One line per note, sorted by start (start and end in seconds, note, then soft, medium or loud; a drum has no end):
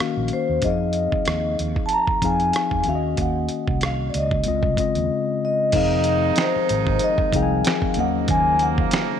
0.00 0.57 D#3 medium
0.00 0.57 A#3 medium
0.00 0.57 C#4 medium
0.00 0.58 F#4 medium
0.00 0.58 F5 medium
0.00 cross-stick medium
0.17 0.29 A#1 medium
0.28 closed hi-hat medium
0.33 0.65 C5 medium
0.49 0.61 D#2 medium
0.62 1.06 F2 medium
0.62 1.83 F3 medium
0.62 1.83 C4 medium
0.62 1.83 D#4 medium
0.62 1.84 G#4 medium
0.62 1.55 D#5 medium
0.62 kick medium
0.62 closed hi-hat medium
0.66 1.84 F5 medium
0.93 closed hi-hat medium
1.12 muted fretless electric bass stroke soft
1.12 kick medium
1.25 1.55 D#2 medium
1.25 cross-stick loud
1.25 closed hi-hat medium
1.59 1.74 D#2 medium
1.59 closed hi-hat medium
1.76 kick medium
1.86 1.91 A5 medium
1.86 closed hi-hat medium
1.93 2.24 A#5 loud
2.07 kick medium
2.22 2.50 F2 medium
2.22 2.86 F3 medium
2.22 2.86 C4 medium
2.22 2.86 D#4 medium
2.22 2.87 G#4 medium
2.22 2.87 F5 medium
2.22 2.83 G#5 medium
2.22 kick medium
2.22 closed hi-hat medium
2.40 closed hi-hat soft
2.53 cross-stick medium
2.53 closed hi-hat medium
2.71 2.84 F2 medium
2.71 kick medium
2.84 3.14 D#2 medium
2.84 4.06 D#3 medium
2.84 4.06 A#3 medium
2.84 4.07 C#4 medium
2.84 closed hi-hat medium
2.88 4.07 F#4 medium
2.88 2.94 E5 medium
2.88 3.20 F5 medium
2.95 4.11 D#5 medium
3.17 3.46 D#2 medium
3.17 kick medium
3.17 closed hi-hat medium
3.22 3.80 F#5 medium
3.49 closed hi-hat medium
3.68 4.09 C2 medium
3.68 kick medium
3.81 cross-stick medium
3.81 closed hi-hat medium
3.85 4.07 F5 medium
4.10 4.15 D5 medium
4.14 4.42 C#2 medium
4.14 5.39 D#5 medium
4.14 closed hi-hat medium
4.31 kick medium
4.44 4.63 C#2 medium
4.44 4.75 C#3 medium
4.44 4.76 G#3 medium
4.44 4.76 C4 medium
4.44 4.76 F4 medium
4.44 closed hi-hat medium
4.48 4.77 D#5 medium
4.63 4.76 C2 medium
4.63 kick medium
4.77 5.67 C#3 medium
4.77 5.67 G#3 medium
4.77 5.68 C4 medium
4.77 5.68 F4 medium
4.77 5.69 D#5 medium
4.77 kick medium
4.77 closed hi-hat medium
4.95 5.08 D#2 medium
4.95 closed hi-hat soft
5.45 6.41 D#5 medium
5.72 6.30 F1 loud
5.72 7.61 C3 medium
5.72 7.94 D#3 medium
5.72 6.93 F3 medium
5.72 7.94 G#3 medium
5.72 7.61 G#3 medium
5.72 6.94 C4 medium
5.72 9.20 D#4 medium
5.72 7.61 D#4 medium
5.72 6.94 D#4 medium
5.72 6.94 G#4 medium
5.72 6.95 F5 medium
5.72 kick loud
5.72 closed hi-hat medium
5.72 crash medium
6.04 closed hi-hat medium
6.36 finger snap medium
6.36 snare loud
6.36 closed hi-hat medium
6.41 7.04 C5 medium
6.56 muted fretless electric bass stroke soft
6.69 6.98 G#1 loud
6.69 closed hi-hat medium
6.87 kick loud
6.99 closed hi-hat medium
7.04 7.35 D#5 loud
7.18 kick loud
7.32 7.61 C2 loud
7.32 7.97 F3 medium
7.32 7.97 C4 medium
7.32 7.98 D#4 medium
7.32 7.98 G#4 medium
7.32 8.00 F5 medium
7.32 7.42 G5 medium
7.32 kick medium
7.32 closed hi-hat medium
7.43 8.01 G#5 medium
7.65 finger snap medium
7.65 snare loud
7.65 closed hi-hat medium
7.82 kick medium
7.94 8.25 D#2 loud
7.94 9.20 C#3 medium
7.94 9.20 D#3 medium
7.94 9.17 D#3 medium
7.94 9.20 F3 medium
7.94 9.20 A#3 medium
7.94 9.17 A#3 medium
7.94 closed hi-hat medium
7.99 9.18 F#3 medium
7.99 9.18 C#4 medium
7.99 9.18 D#5 medium
7.99 8.28 F#5 loud
8.28 8.85 D#2 loud
8.28 8.62 G#5 loud
8.28 kick medium
8.28 closed hi-hat medium
8.59 8.79 F#5 loud
8.59 closed hi-hat medium
8.78 9.20 F5 medium
8.78 kick medium
8.91 finger snap medium
8.91 snare loud
8.91 closed hi-hat medium